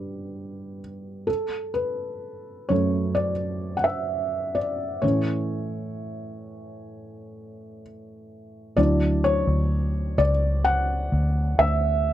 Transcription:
0, 0, Header, 1, 3, 480
1, 0, Start_track
1, 0, Key_signature, 2, "major"
1, 0, Tempo, 937500
1, 656, Time_signature, 4, 2, 24, 8
1, 6212, End_track
2, 0, Start_track
2, 0, Title_t, "Felt piano"
2, 0, Program_c, 0, 0
2, 0, Control_c, 0, 64, 127
2, 0, Note_on_c, 0, 43, 37
2, 0, Note_on_c, 0, 50, 35
2, 0, Note_on_c, 0, 59, 41
2, 0, Note_on_c, 0, 67, 57
2, 0, Note_on_c, 0, 71, 67
2, 399, Note_off_c, 0, 67, 0
2, 635, Note_off_c, 0, 43, 0
2, 636, Note_off_c, 0, 50, 0
2, 637, Note_off_c, 0, 59, 0
2, 650, Note_on_c, 0, 69, 61
2, 663, Control_c, 0, 64, 0
2, 667, Note_off_c, 0, 71, 0
2, 743, Control_c, 0, 64, 127
2, 876, Note_off_c, 0, 69, 0
2, 890, Note_on_c, 0, 71, 63
2, 1375, Note_on_c, 0, 73, 62
2, 1381, Note_on_c, 0, 42, 40
2, 1382, Note_on_c, 0, 54, 35
2, 1387, Note_off_c, 0, 71, 0
2, 1387, Note_on_c, 0, 57, 43
2, 1599, Note_off_c, 0, 73, 0
2, 1611, Note_on_c, 0, 74, 75
2, 1698, Note_off_c, 0, 42, 0
2, 1698, Note_off_c, 0, 54, 0
2, 1701, Note_off_c, 0, 57, 0
2, 1917, Note_off_c, 0, 74, 0
2, 1930, Note_on_c, 0, 78, 60
2, 1966, Note_on_c, 0, 76, 73
2, 1971, Note_off_c, 0, 78, 0
2, 2329, Note_on_c, 0, 74, 67
2, 2342, Note_off_c, 0, 76, 0
2, 2569, Note_on_c, 0, 73, 57
2, 2571, Note_on_c, 0, 45, 42
2, 2576, Note_on_c, 0, 52, 34
2, 2577, Note_on_c, 0, 61, 42
2, 2579, Note_off_c, 0, 74, 0
2, 2582, Control_c, 0, 64, 0
2, 2659, Control_c, 0, 64, 127
2, 3992, Note_off_c, 0, 73, 0
2, 4473, Note_off_c, 0, 45, 0
2, 4475, Note_off_c, 0, 52, 0
2, 4476, Note_off_c, 0, 61, 0
2, 4488, Note_on_c, 0, 74, 84
2, 4490, Note_on_c, 0, 54, 47
2, 4492, Note_on_c, 0, 62, 47
2, 4495, Note_on_c, 0, 64, 51
2, 4503, Control_c, 0, 64, 0
2, 4598, Control_c, 0, 64, 127
2, 4715, Note_off_c, 0, 74, 0
2, 4731, Note_on_c, 0, 73, 87
2, 5192, Note_off_c, 0, 54, 0
2, 5193, Note_off_c, 0, 62, 0
2, 5195, Note_off_c, 0, 64, 0
2, 5213, Note_on_c, 0, 74, 88
2, 5228, Note_off_c, 0, 73, 0
2, 5267, Note_off_c, 0, 74, 0
2, 5450, Note_on_c, 0, 78, 94
2, 5933, Note_on_c, 0, 76, 91
2, 5947, Note_off_c, 0, 78, 0
2, 6212, Note_off_c, 0, 76, 0
2, 6212, End_track
3, 0, Start_track
3, 0, Title_t, "Fingered electric bass"
3, 0, Program_c, 1, 33
3, 4491, Note_on_c, 1, 38, 98
3, 4833, Note_off_c, 1, 38, 0
3, 4850, Note_on_c, 1, 38, 85
3, 5192, Note_off_c, 1, 38, 0
3, 5211, Note_on_c, 1, 37, 82
3, 5673, Note_off_c, 1, 37, 0
3, 5695, Note_on_c, 1, 38, 89
3, 5918, Note_off_c, 1, 38, 0
3, 5931, Note_on_c, 1, 38, 103
3, 6212, Note_off_c, 1, 38, 0
3, 6212, End_track
0, 0, End_of_file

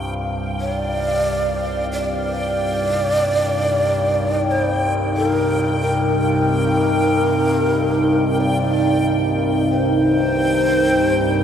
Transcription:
0, 0, Header, 1, 5, 480
1, 0, Start_track
1, 0, Tempo, 1304348
1, 1653, Time_signature, 4, 2, 24, 8
1, 4209, End_track
2, 0, Start_track
2, 0, Title_t, "Synth texture"
2, 0, Program_c, 0, 99
2, 0, Note_on_c, 0, 79, 80
2, 4209, Note_off_c, 0, 79, 0
2, 4209, End_track
3, 0, Start_track
3, 0, Title_t, "Shakuhachi"
3, 0, Program_c, 1, 77
3, 222, Note_on_c, 1, 73, 112
3, 277, Note_off_c, 1, 73, 0
3, 277, Note_on_c, 1, 74, 112
3, 683, Note_off_c, 1, 74, 0
3, 709, Note_on_c, 1, 74, 113
3, 1660, Note_on_c, 1, 72, 102
3, 1665, Note_off_c, 1, 74, 0
3, 1797, Note_off_c, 1, 72, 0
3, 1902, Note_on_c, 1, 69, 99
3, 1942, Note_off_c, 1, 69, 0
3, 1942, Note_on_c, 1, 70, 99
3, 2123, Note_off_c, 1, 70, 0
3, 2137, Note_on_c, 1, 70, 109
3, 3091, Note_on_c, 1, 74, 96
3, 3097, Note_off_c, 1, 70, 0
3, 3473, Note_off_c, 1, 74, 0
3, 3573, Note_on_c, 1, 72, 115
3, 4209, Note_off_c, 1, 72, 0
3, 4209, End_track
4, 0, Start_track
4, 0, Title_t, "Ambient pad"
4, 0, Program_c, 2, 92
4, 0, Note_on_c, 2, 48, 76
4, 0, Note_on_c, 2, 60, 68
4, 0, Note_on_c, 2, 63, 87
4, 0, Note_on_c, 2, 67, 77
4, 0, Note_on_c, 2, 72, 96
4, 0, Note_on_c, 2, 77, 75
4, 122, Note_on_c, 2, 70, 84
4, 182, Note_on_c, 2, 79, 94
4, 922, Note_off_c, 2, 67, 0
4, 1075, Note_off_c, 2, 72, 0
4, 1640, Note_off_c, 2, 60, 0
4, 4209, Note_off_c, 2, 48, 0
4, 4209, Note_off_c, 2, 63, 0
4, 4209, Note_off_c, 2, 70, 0
4, 4209, Note_off_c, 2, 77, 0
4, 4209, Note_off_c, 2, 79, 0
4, 4209, End_track
5, 0, Start_track
5, 0, Title_t, "Synth drone"
5, 0, Program_c, 3, 95
5, 0, Note_on_c, 3, 36, 74
5, 0, Note_on_c, 3, 43, 73
5, 4209, Note_off_c, 3, 36, 0
5, 4209, Note_off_c, 3, 43, 0
5, 4209, End_track
0, 0, End_of_file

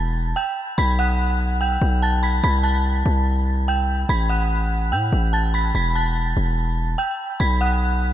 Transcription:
0, 0, Header, 1, 3, 480
1, 0, Start_track
1, 0, Tempo, 413793
1, 905, Time_signature, 4, 2, 24, 8
1, 9433, End_track
2, 0, Start_track
2, 0, Title_t, "Synth bell"
2, 0, Program_c, 0, 98
2, 0, Note_on_c, 0, 81, 78
2, 0, Note_on_c, 0, 93, 60
2, 379, Note_off_c, 0, 81, 0
2, 384, Note_off_c, 0, 93, 0
2, 419, Note_on_c, 0, 79, 85
2, 429, Note_on_c, 0, 91, 66
2, 604, Note_off_c, 0, 79, 0
2, 610, Note_off_c, 0, 91, 0
2, 903, Note_on_c, 0, 83, 110
2, 913, Note_on_c, 0, 95, 87
2, 1087, Note_off_c, 0, 83, 0
2, 1092, Note_off_c, 0, 95, 0
2, 1146, Note_on_c, 0, 78, 79
2, 1156, Note_on_c, 0, 90, 60
2, 1822, Note_off_c, 0, 78, 0
2, 1827, Note_off_c, 0, 90, 0
2, 1864, Note_on_c, 0, 79, 78
2, 1873, Note_on_c, 0, 91, 66
2, 2315, Note_off_c, 0, 79, 0
2, 2320, Note_off_c, 0, 91, 0
2, 2348, Note_on_c, 0, 81, 75
2, 2357, Note_on_c, 0, 93, 57
2, 2529, Note_off_c, 0, 81, 0
2, 2535, Note_off_c, 0, 93, 0
2, 2584, Note_on_c, 0, 83, 77
2, 2593, Note_on_c, 0, 95, 56
2, 2767, Note_off_c, 0, 83, 0
2, 2772, Note_off_c, 0, 95, 0
2, 2825, Note_on_c, 0, 83, 100
2, 2835, Note_on_c, 0, 95, 80
2, 3008, Note_off_c, 0, 83, 0
2, 3014, Note_off_c, 0, 95, 0
2, 3056, Note_on_c, 0, 81, 79
2, 3066, Note_on_c, 0, 93, 60
2, 4214, Note_off_c, 0, 81, 0
2, 4219, Note_off_c, 0, 93, 0
2, 4270, Note_on_c, 0, 79, 80
2, 4279, Note_on_c, 0, 91, 63
2, 4451, Note_off_c, 0, 79, 0
2, 4456, Note_off_c, 0, 91, 0
2, 4748, Note_on_c, 0, 83, 109
2, 4757, Note_on_c, 0, 95, 89
2, 4929, Note_off_c, 0, 83, 0
2, 4935, Note_off_c, 0, 95, 0
2, 4981, Note_on_c, 0, 78, 78
2, 4991, Note_on_c, 0, 90, 61
2, 5660, Note_off_c, 0, 78, 0
2, 5665, Note_off_c, 0, 90, 0
2, 5708, Note_on_c, 0, 79, 82
2, 5717, Note_on_c, 0, 91, 63
2, 6157, Note_off_c, 0, 79, 0
2, 6162, Note_off_c, 0, 91, 0
2, 6183, Note_on_c, 0, 81, 73
2, 6192, Note_on_c, 0, 93, 65
2, 6366, Note_off_c, 0, 81, 0
2, 6372, Note_off_c, 0, 93, 0
2, 6426, Note_on_c, 0, 83, 75
2, 6435, Note_on_c, 0, 95, 53
2, 6608, Note_off_c, 0, 83, 0
2, 6614, Note_off_c, 0, 95, 0
2, 6668, Note_on_c, 0, 83, 101
2, 6678, Note_on_c, 0, 95, 80
2, 6849, Note_off_c, 0, 83, 0
2, 6855, Note_off_c, 0, 95, 0
2, 6906, Note_on_c, 0, 81, 74
2, 6916, Note_on_c, 0, 93, 60
2, 8059, Note_off_c, 0, 81, 0
2, 8064, Note_off_c, 0, 93, 0
2, 8099, Note_on_c, 0, 79, 85
2, 8108, Note_on_c, 0, 91, 64
2, 8284, Note_off_c, 0, 79, 0
2, 8289, Note_off_c, 0, 91, 0
2, 8582, Note_on_c, 0, 83, 110
2, 8591, Note_on_c, 0, 95, 90
2, 8766, Note_off_c, 0, 83, 0
2, 8772, Note_off_c, 0, 95, 0
2, 8825, Note_on_c, 0, 78, 81
2, 8834, Note_on_c, 0, 90, 62
2, 9433, Note_off_c, 0, 78, 0
2, 9433, Note_off_c, 0, 90, 0
2, 9433, End_track
3, 0, Start_track
3, 0, Title_t, "808-style bass"
3, 0, Program_c, 1, 38
3, 0, Note_on_c, 1, 28, 104
3, 396, Note_off_c, 1, 28, 0
3, 905, Note_on_c, 1, 35, 111
3, 2058, Note_off_c, 1, 35, 0
3, 2105, Note_on_c, 1, 35, 107
3, 2796, Note_off_c, 1, 35, 0
3, 2825, Note_on_c, 1, 36, 108
3, 3516, Note_off_c, 1, 36, 0
3, 3545, Note_on_c, 1, 36, 103
3, 4698, Note_off_c, 1, 36, 0
3, 4745, Note_on_c, 1, 33, 108
3, 5705, Note_on_c, 1, 45, 96
3, 5722, Note_off_c, 1, 33, 0
3, 5933, Note_off_c, 1, 45, 0
3, 5944, Note_on_c, 1, 33, 101
3, 6636, Note_off_c, 1, 33, 0
3, 6665, Note_on_c, 1, 28, 106
3, 7356, Note_off_c, 1, 28, 0
3, 7384, Note_on_c, 1, 28, 102
3, 8075, Note_off_c, 1, 28, 0
3, 8585, Note_on_c, 1, 35, 110
3, 9433, Note_off_c, 1, 35, 0
3, 9433, End_track
0, 0, End_of_file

